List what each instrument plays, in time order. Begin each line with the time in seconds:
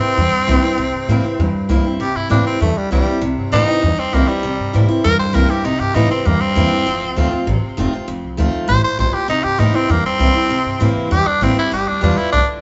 Already playing: steel-string acoustic guitar C3, tenor saxophone C4
0.01 steel-string acoustic guitar C4 E4, muted upright bass stroke
0.17 upright bass E2, steel-string acoustic guitar G2
0.33 muted upright bass stroke
0.47 upright bass C2, steel-string acoustic guitar E3 A#3 C4 E4
0.62 steel-string acoustic guitar C4 E4, muted upright bass stroke
0.78 upright bass C2, steel-string acoustic guitar C3
0.93 upright bass G2
1.09 upright bass A2, steel-string acoustic guitar E3 A#3 C4 E4
1.24 steel-string acoustic guitar C4 E4, muted upright bass stroke
1.39 upright bass E2, steel-string acoustic guitar G2
1.54 muted upright bass stroke
1.69 upright bass C2, steel-string acoustic guitar E3 A#3 C4 E4
1.84 steel-string acoustic guitar C4 E4
2.00 upright bass C2, steel-string acoustic guitar C3, tenor saxophone G4
2.16 upright bass G2, tenor saxophone E4
2.29 upright bass A2, steel-string acoustic guitar E3 A#3 C4 E4, tenor saxophone D4
2.45 tenor saxophone C4, steel-string acoustic guitar C4 E4
2.60 upright bass E2, steel-string acoustic guitar G2, tenor saxophone A3
2.77 tenor saxophone G3, muted upright bass stroke
2.91 upright bass C2, steel-string acoustic guitar E3 A#3 C4 E4, tenor saxophone G3
3.06 steel-string acoustic guitar C4 E4, muted upright bass stroke
3.21 upright bass C2, steel-string acoustic guitar C3
3.38 upright bass G2
3.52 upright bass A2, steel-string acoustic guitar E3 A#3 C4 E4, tenor saxophone D#4
3.67 steel-string acoustic guitar C4 E4, muted upright bass stroke
3.82 upright bass E2, steel-string acoustic guitar G2
3.98 tenor saxophone C4, muted upright bass stroke
4.13 upright bass C2, steel-string acoustic guitar E3 A#3 C4 E4, tenor saxophone A#3
4.28 tenor saxophone G3, steel-string acoustic guitar C4 E4
4.43 upright bass C2, steel-string acoustic guitar C3
4.60 upright bass G2
4.73 upright bass A2, steel-string acoustic guitar E3 A#3 C4 E4
4.88 steel-string acoustic guitar C4 E4, muted upright bass stroke
5.04 upright bass E2, steel-string acoustic guitar G2, tenor saxophone A#4
5.19 tenor saxophone C5, muted upright bass stroke
5.33 upright bass C2, steel-string acoustic guitar E3 A#3 C4 E4, tenor saxophone A#4
5.49 steel-string acoustic guitar C4 E4, tenor saxophone G4
5.65 upright bass C2, steel-string acoustic guitar C3, tenor saxophone D#4
5.80 upright bass G2, tenor saxophone G4
5.94 upright bass A2, steel-string acoustic guitar E3 A#3 C4 E4, tenor saxophone D#4
6.09 tenor saxophone C4, steel-string acoustic guitar C4 E4, muted upright bass stroke
6.25 upright bass E2, steel-string acoustic guitar G2, tenor saxophone A#3
6.41 tenor saxophone C4, muted upright bass stroke
6.55 upright bass E2, steel-string acoustic guitar E3 A#3 C4 E4
6.71 steel-string acoustic guitar C4 E4, muted upright bass stroke
6.86 upright bass F1, steel-string acoustic guitar F2
7.02 upright bass C2
7.16 upright bass D2, steel-string acoustic guitar D#3 A3 C4 F4
7.31 steel-string acoustic guitar C4 F4, muted upright bass stroke
7.47 upright bass A1, steel-string acoustic guitar C3
7.63 muted upright bass stroke
7.77 upright bass F1, steel-string acoustic guitar D#3 A3 C4 F4
7.93 steel-string acoustic guitar C4 F4, muted upright bass stroke
8.08 upright bass F1, steel-string acoustic guitar F2
8.23 upright bass C2
8.37 upright bass D2, steel-string acoustic guitar D#3 A3 C4 F4
8.53 muted upright bass stroke
8.68 upright bass A1, steel-string acoustic guitar A2, tenor saxophone C5
8.84 tenor saxophone C5, muted upright bass stroke
8.99 upright bass A#1, steel-string acoustic guitar A#2, tenor saxophone C5
9.14 tenor saxophone G4, muted upright bass stroke
9.28 upright bass C2, steel-string acoustic guitar C3, tenor saxophone D#4
9.44 upright bass G2, tenor saxophone G4
9.58 upright bass A2, steel-string acoustic guitar E3 A#3 C4 E4, tenor saxophone D#4
9.74 tenor saxophone C4, steel-string acoustic guitar C4 E4, muted upright bass stroke
9.89 upright bass E2, steel-string acoustic guitar G2, tenor saxophone A#3
10.05 tenor saxophone C4, muted upright bass stroke
10.19 upright bass C2, steel-string acoustic guitar E3 A#3 C4 E4
10.35 steel-string acoustic guitar C4 E4
10.50 upright bass C2, steel-string acoustic guitar C3
10.66 upright bass G2
10.80 upright bass A2, steel-string acoustic guitar E3 A#3 C4 E4
10.97 muted upright bass stroke
11.11 upright bass E2, steel-string acoustic guitar G2, tenor saxophone G4
11.26 tenor saxophone D4, muted upright bass stroke
11.41 upright bass A1, steel-string acoustic guitar E3 A#3 C4 E4, tenor saxophone C4
11.56 steel-string acoustic guitar C4 E4, tenor saxophone E4, muted upright bass stroke
11.72 upright bass G1, steel-string acoustic guitar G3, tenor saxophone G4
11.88 upright bass D2, tenor saxophone D4
12.01 upright bass E2, steel-string acoustic guitar G3 B3 F4, tenor saxophone D4
12.17 steel-string acoustic guitar B3 F4, tenor saxophone E4, muted upright bass stroke
12.32 upright bass B1, steel-string acoustic guitar D3, tenor saxophone D4